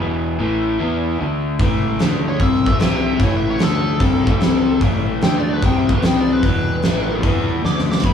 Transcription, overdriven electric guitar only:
0.00 E2 B2 E3
0.39 A2 E3 A3
0.80 E3 B3 E4
1.20 D3 A3 D4
1.60 A2 E3 A3
2.01 D3 A3 D4
2.41 C3 G3 C4
2.68 A2 E3 A3
2.81 C3 G3 C4
3.21 A2 E3 A3
3.60 D3 A3 D4
4.00 C3 G3 C4
4.28 A2 E3 A3
4.41 C3 G3 C4
4.81 A2 E3 A3
5.23 D3 A3 D4
5.64 C3 G3 C4
5.90 A2 E3 A3
6.03 C3 G3 C4
6.44 E2 B2 E3
6.85 A2 E3 A3
7.23 E3 B3 E4
7.64 D3 A3 D4
8.04 B2 F#3 B3

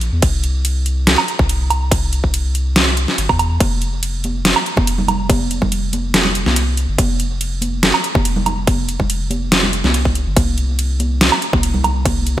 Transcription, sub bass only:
Already playing: A#1
0.13 E2
0.23 C2
1.39 C2
2.24 C2
3.18 G1
3.29 E2
3.60 F1
4.77 F1
5.62 F1
6.46 C2
6.88 G1
6.98 F1
8.15 F1
9.00 F1
9.84 C2
10.27 G1
10.37 C2
11.53 C2

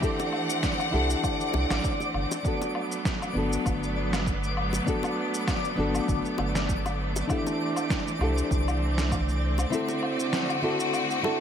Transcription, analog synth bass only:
0.94 C2
1.54 C2
1.71 A1
2.15 G1
3.35 G1
3.66 G1
5.78 G1
6.09 G1
6.39 G1
8.21 C2
8.51 C2

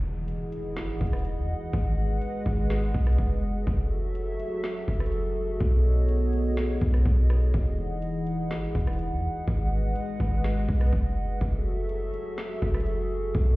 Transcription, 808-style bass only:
Already playing: E1
0.77 G#1
1.01 E1
1.37 E2
1.73 G#1
2.46 G#1
2.94 B1
3.18 F#1
3.67 F#1
4.88 F#1
5.60 B1
6.81 B1
7.06 B1
7.54 E1
8.51 G#1
8.75 E1
9.11 E2
9.48 G#1
10.20 G#1
10.69 B1
10.93 F#1
11.41 F#1
12.62 F#1
13.35 B1

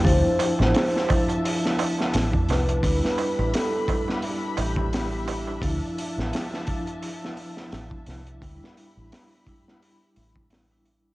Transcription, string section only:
0.05 F3 D4 E5 A5
2.84 G4 E5 B5
5.63 F3 A5
8.41 G4 B5

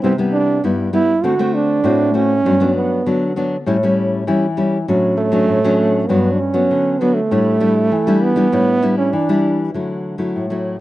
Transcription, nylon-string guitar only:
0.04 C3 G3 B3 E4
0.18 G3 B3 E4
0.64 G2 G3 B3 E4
0.93 G3 B3 E4
1.24 D3 A3 C4 F#4
1.39 A3 C4 F#4
1.84 A2 A3 C4 F#4
2.14 A3 C4 F#4
2.45 G2 F#3 B3 D4
2.60 F#3 B3 D4
3.06 D3 F#3 B3 D4
3.36 F#3 B3 D4
3.66 A2 G3 C#4 E4
3.83 G3 C#4 E4
4.27 E3 G3 C#4 E4
4.57 G3 C#4 E4
4.88 A2 F#3 C#4 D4
5.32 F#3 C#4 D4
5.49 A2
5.64 F#3 C#4 D4
6.09 G2 F#3 B3 D4
6.54 F#3 B3
6.71 D3
7.01 F#3 B3 D4
7.31 A2 G3 D4 E4
7.60 G3 D4 E4
7.92 E3
8.07 G3 D4 E4
8.36 G3 D4 E4
8.52 A2 G3 D4 E4
8.82 G3 D4 E4
9.13 E3
9.29 G3 D4 E4
9.74 D3 F#3 A3 E4
10.18 F#3 A3 E4
10.36 A2
10.50 F#3 A3 E4

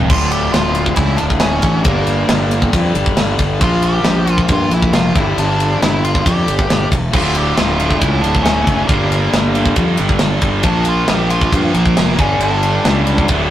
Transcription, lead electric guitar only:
0.10 F4
0.32 G4
0.53 F4
0.96 E4
1.17 D4
1.40 C#4
1.83 A#3
3.62 F4
3.84 G4
4.31 F4
4.53 F4
4.74 E4
4.94 F4
5.17 E4
5.39 D4
5.82 E4
6.05 F4
6.25 G4
7.15 F4
7.38 G4
7.57 F4
7.80 F4
8.00 E4
8.22 D4
8.43 C#4
8.87 A#3
10.65 D4
10.88 F4
11.09 G4
11.30 F4
11.74 A#3
12.19 C#4
12.43 D4

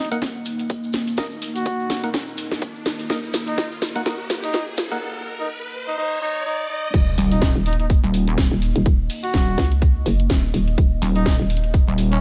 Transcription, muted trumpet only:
0.11 D#4
1.55 F#4
3.47 D#4
4.43 D#4
5.39 D#4
5.87 D#4
5.98 D#4
6.22 D#4
6.46 D#4
6.70 D#4
7.32 D#4
7.66 D#4
7.80 D#4
9.23 F#4
11.16 D#4
12.11 C#4

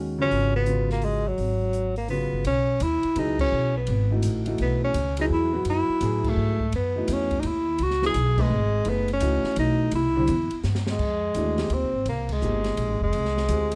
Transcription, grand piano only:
Already playing: D#3 G#3 C#4 F#4
0.18 C#3 F#3 B3 F4
0.67 C#3 F#3 B3 F4
2.08 C#3 F#3 B3 F4
3.16 F#3 B3 E4 G#4
4.10 E3 A3 D#4 F#4
4.46 E3 A3 D#4 F#4
5.18 F#3 B3 E4 G#4
5.52 F#3 B3 E4 F#4
6.00 F#3 B3 E4 G#4
6.96 E3 A3 D#4 F#4
8.02 F#3 B3 E4 G#4
8.37 A3 D#4 G#4 B4
8.85 A3 D#4 G#4 B4
9.21 E3 A3 D#4 F#4
9.57 E3 A3 D#4 F#4
10.16 D3 G3 C4 E4
11.35 E3 A3 D4 F#4
11.58 F3 A#3 D#4 G4
12.41 F3 A#3 D#4 G4
13.50 C4 F4 G4 G#4

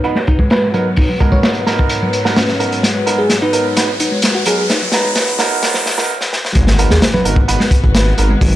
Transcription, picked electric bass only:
Already playing: D#4
0.28 D#4
0.39 G#3
0.51 G#3
0.74 F#3
0.98 D#4
1.09 F#3
1.21 G#3
1.33 G#3
2.02 F#3
2.37 C#4
2.84 G#3
3.42 D#4
4.00 D#4
4.12 G#3
4.23 G#3
4.46 F#3
4.69 D#4
4.81 F#3
4.93 G#3
5.05 G#3
5.75 F#3
6.56 G#3
7.14 F#3
7.60 G#3
8.30 G#3
8.42 F#3

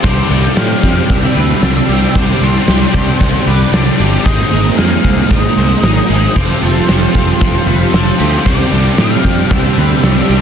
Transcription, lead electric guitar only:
0.06 D5
0.58 F5
1.12 E5
2.17 D5
2.42 C5
3.47 D5
4.25 D#5
4.77 F5
5.31 D#5
6.37 D5
6.62 C5
7.67 C5
8.46 D5
8.98 F5
9.51 E5

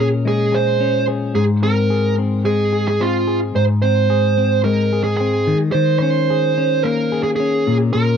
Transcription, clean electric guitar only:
Already playing: A#2 C#4 G#4
0.25 G#3
0.52 G#4
0.80 C#4
1.08 G#4
1.35 G#2
1.63 C4
1.90 G#4
2.18 C4
2.45 G#3
2.73 G#4
3.00 C4
3.27 G#4
3.55 G#2
3.83 C4
4.10 G#4
4.38 C4
4.65 G#3
4.93 G#4
5.20 C4
5.47 D#3
5.74 D#3
6.02 C#4
6.30 G#4
6.58 C#4
6.85 A#3
7.12 G#4
7.40 C#4
7.67 A#2
7.95 A#2

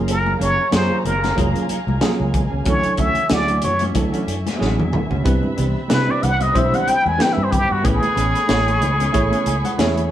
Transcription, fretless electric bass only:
Already playing: F#1
0.41 F#1
0.73 F#2
0.91 muted fretless electric bass stroke
1.05 F#1
1.38 F1
1.70 muted fretless electric bass stroke
1.87 C2
2.20 C#2
2.52 C#2
2.66 D2
2.86 muted fretless electric bass stroke
2.99 D2
3.31 D2
3.64 F#2
3.96 D2
4.27 F#2
4.61 A1
4.79 E2
4.93 D2
5.11 C#2
5.26 C2
5.58 C2
5.91 C3
6.08 muted fretless electric bass stroke
6.23 C2
6.56 B1
6.87 muted fretless electric bass stroke
7.06 E2
7.37 G2
7.71 G2
7.85 A1
8.17 A1
8.49 A1
8.81 C#2
9.14 A1
9.46 C#2
9.79 E2

